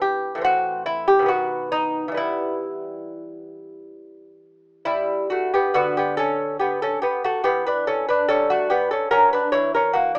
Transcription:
0.00 0.34 E2 medium
0.00 0.36 E3 medium
0.00 0.37 B3 medium
0.00 0.42 G4 loud
0.35 1.19 A2 medium
0.35 1.22 E3 medium
0.41 1.25 C4 medium
0.41 0.85 F#4 loud
0.86 1.07 E4 loud
1.08 1.29 G4 loud
1.19 2.10 B2 medium
1.19 2.08 D#3 medium
1.26 2.13 B3 medium
1.26 1.70 F#4 medium
1.72 2.15 D#4 loud
2.08 5.66 E3 medium
2.08 4.85 G3 medium
2.14 5.54 B3 medium
2.14 4.82 E4 medium
4.85 5.28 G3 medium
4.85 5.28 E4 loud
5.30 5.52 A3 medium
5.30 5.52 F#4 medium
5.54 5.74 B3 medium
5.54 5.75 G4 medium
5.74 6.96 D3 medium
5.74 5.95 B3 medium
5.74 5.96 F#4 loud
5.97 6.17 B3 medium
5.97 6.17 G4 medium
6.17 6.57 C#4 medium
6.17 6.58 A4 loud
6.59 6.80 B3 medium
6.59 6.80 G4 medium
6.82 7.01 C#4 medium
6.82 7.01 A4 medium
7.02 7.22 B3 medium
7.02 7.23 G4 medium
7.24 7.44 A3 medium
7.24 7.45 F#4 medium
7.44 8.05 E3 medium
7.44 7.64 B3 medium
7.44 7.65 G4 loud
7.67 7.86 D4 medium
7.67 7.87 B4 medium
7.87 8.07 C#4 medium
7.87 8.08 A4 medium
8.08 8.29 D4 medium
8.08 8.28 B4 medium
8.29 8.88 G3 medium
8.29 8.49 C#4 medium
8.29 8.50 A4 loud
8.50 8.70 A3 medium
8.50 8.71 F#4 medium
8.70 8.90 B3 medium
8.70 8.90 G4 medium
8.91 9.11 C#4 medium
8.91 9.11 A4 medium
9.11 9.41 F#3 medium
9.11 9.31 C#4 medium
9.11 9.32 A#4 loud
9.33 9.53 D4 medium
9.33 9.52 B4 medium
9.52 10.19 E3 medium
9.52 9.73 E4 medium
9.52 9.74 C#5 medium
9.75 9.94 C#4 medium
9.75 9.95 A#4 medium
9.93 10.14 A#3 medium
9.93 10.14 F#4 medium
10.15 10.19 D4 medium

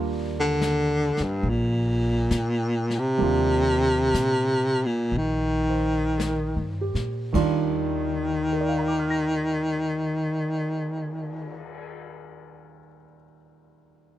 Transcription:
0.00 1.14 D#2 medium
0.00 3.16 G3 soft
0.00 3.18 A#3 soft
0.00 3.19 D4 soft
0.00 3.21 F4 medium
0.40 1.25 D3 medium
0.62 snare soft
0.62 hi-hat pedal soft
1.17 muted upright bass stroke soft
1.17 snare soft
1.23 1.51 G2 medium
1.43 2.26 A#1 medium
1.43 brush sweep soft
1.50 3.01 A#2 medium
2.31 3.16 A#2 medium
2.31 snare soft
2.31 hi-hat pedal soft
2.90 snare soft
2.99 4.87 C3 medium
3.18 4.10 D#2 medium
3.18 7.33 G3 soft
3.18 7.33 A#3 soft
3.18 7.34 D4 soft
3.18 brush sweep soft
3.23 7.34 F4 soft
4.14 5.08 A#2 medium
4.14 snare soft
4.14 hi-hat pedal soft
4.86 5.19 A#2 medium
5.12 6.52 A#1 medium
5.12 brush sweep soft
5.17 7.00 D#3 medium
5.69 6.46 C5 soft
6.18 7.11 A#4 soft
6.18 snare soft
6.18 hi-hat pedal soft
6.56 6.92 G2 soft
6.81 7.63 G4 soft
6.95 7.31 A#2 soft
6.95 snare soft
7.33 11.62 D#2 soft
7.33 11.60 D#2 medium
7.33 11.63 D#3 soft
7.33 11.64 G3 soft
7.33 11.65 D4 soft
7.33 11.65 F4 medium
7.33 kick soft
7.33 crash soft
7.38 11.63 D#3 medium
8.17 cymbal swell soft
8.53 12.78 A#4 soft
8.61 12.86 D5 soft
8.69 12.94 F5 soft
8.78 13.04 A#5 soft
8.88 13.13 D6 soft
8.99 13.25 F6 soft
9.10 13.36 A#6 soft

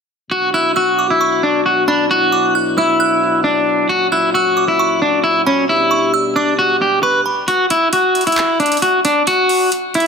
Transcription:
0.31 3.86 B2 medium
0.31 5.65 F#3 medium
0.31 3.86 D4 medium
0.31 2.09 F#4 medium
0.31 0.49 F#4 loud
0.54 0.71 E4 loud
0.54 0.75 F#6 medium
0.76 1.09 F#4 medium
0.76 0.97 E6 medium
0.99 1.20 D6 medium
1.10 1.41 E4 medium
1.21 1.84 C#6 medium
1.43 1.61 D4 medium
1.66 1.83 F#4 medium
1.88 2.05 D4 medium
1.88 2.09 B5 medium
2.11 3.88 E4 medium
2.11 2.53 F#4 loud
2.32 2.54 D6 medium
2.55 2.76 F#6 medium
2.78 3.41 E4 medium
2.78 2.99 E6 medium
3.00 3.42 F#6 loud
3.44 3.87 D4 medium
3.89 5.67 A#2 medium
3.89 5.67 C#4 medium
3.89 4.07 F#4 loud
3.89 5.67 F#4 medium
4.12 4.29 E4 medium
4.12 4.33 F#6 medium
4.34 4.67 F#4 medium
4.34 4.56 E6 medium
4.57 4.78 D6 medium
4.68 4.99 E4 medium
4.79 5.42 C#6 medium
5.02 5.19 D4 medium
5.24 5.41 E4 medium
5.46 5.64 C#4 medium
5.46 5.68 B5 medium
5.69 7.46 B2 medium
5.69 7.46 G3 medium
5.69 7.46 D4 medium
5.69 6.11 E4 loud
5.69 7.46 G4 medium
5.91 6.12 C#6 medium
6.14 6.35 E6 medium
6.36 6.53 D4 medium
6.36 6.99 D6 medium
6.59 6.76 F#4 medium
6.82 6.98 G4 medium
7.03 7.20 B4 medium
7.03 7.24 C#6 medium
7.26 7.47 B5 medium
7.48 7.65 F#4 loud
7.48 closed hi-hat medium
7.70 7.88 E4 loud
7.70 closed hi-hat medium
7.93 8.25 F#4 medium
7.93 closed hi-hat medium
8.15 closed hi-hat soft
8.21 closed hi-hat medium
8.27 8.58 E4 medium
8.27 closed hi-hat medium
8.32 closed hi-hat medium
8.38 clap loud
8.38 closed hi-hat medium
8.60 8.77 D4 medium
8.60 closed hi-hat soft
8.66 closed hi-hat medium
8.72 closed hi-hat medium
8.77 closed hi-hat medium
8.82 8.99 F#4 medium
8.82 closed hi-hat medium
9.05 9.22 D4 medium
9.05 closed hi-hat medium
9.27 9.69 F#4 loud
9.27 closed hi-hat medium
9.49 open hi-hat medium
9.72 closed hi-hat medium
9.94 10.07 E4 medium
9.94 closed hi-hat soft
10.00 closed hi-hat medium

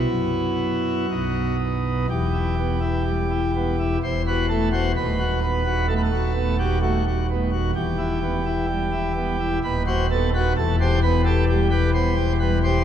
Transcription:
0.00 1.05 B3 soft
0.00 1.06 E4 soft
0.00 1.56 F#4 medium
0.09 1.07 F#2 medium
1.11 2.06 B1 medium
1.11 2.06 B2 medium
1.11 2.07 B3 soft
1.11 2.06 D#4 soft
2.10 3.97 E1 medium
2.10 3.97 E2 medium
2.10 3.97 G4 loud
2.33 2.54 E4 soft
2.58 2.79 B3 medium
2.80 3.02 E4 medium
3.05 3.27 G3 medium
3.30 3.51 E4 medium
3.56 3.76 B3 medium
3.79 3.98 E4 medium
4.03 4.93 E1 medium
4.03 4.93 E2 medium
4.03 4.22 C5 medium
4.27 4.47 F#4 medium
4.27 4.46 B4 medium
4.49 4.69 A3 soft
4.49 4.68 A4 medium
4.72 4.92 F#4 medium
4.72 4.92 C5 medium
4.96 7.71 D#1 medium
4.96 7.71 D#2 medium
4.96 5.86 B4 medium
5.19 5.39 F#4 medium
5.42 5.63 B3 medium
5.66 5.86 F#4 medium
5.88 6.09 A3 medium
5.88 5.94 A4 medium
5.96 6.01 B4 medium
6.03 6.57 A4 medium
6.12 6.32 F#4 medium
6.34 6.55 B3 medium
6.59 6.79 F#4 medium
6.59 6.78 G4 medium
6.82 7.02 A3 medium
6.82 7.05 F#4 medium
7.07 7.26 F#4 medium
7.30 7.50 B3 medium
7.52 7.71 F#4 medium
7.75 9.58 E1 medium
7.75 9.58 E2 medium
7.75 9.58 G4 loud
7.98 8.19 E4 medium
8.23 8.43 B3 medium
8.45 8.66 E4 medium
8.69 8.89 G3 medium
8.92 9.12 E4 medium
9.16 9.37 B3 medium
9.40 9.59 E4 medium
9.64 10.53 D#1 medium
9.64 10.53 D#2 medium
9.64 9.83 B4 medium
9.87 10.07 F#4 medium
9.87 10.06 C5 medium
10.11 10.31 B3 medium
10.11 10.30 A4 loud
10.35 10.53 F#4 medium
10.35 10.53 B4 loud
10.57 12.84 E1 medium
10.57 12.84 E2 medium
10.57 10.75 A4 loud
10.80 11.00 G4 medium
10.80 10.99 C5 loud
11.03 11.23 B3 medium
11.03 11.22 B4 loud
11.25 11.45 G4 medium
11.25 11.44 A4 loud
11.49 11.68 G3 medium
11.49 11.67 G4 loud
11.71 11.91 G4 medium
11.71 11.90 B4 loud
11.94 12.14 B3 medium
11.94 12.33 C5 loud
12.16 12.36 G4 medium
12.40 12.60 G3 medium
12.40 12.59 B4 loud
12.64 12.83 G4 medium
12.64 12.82 C5 loud

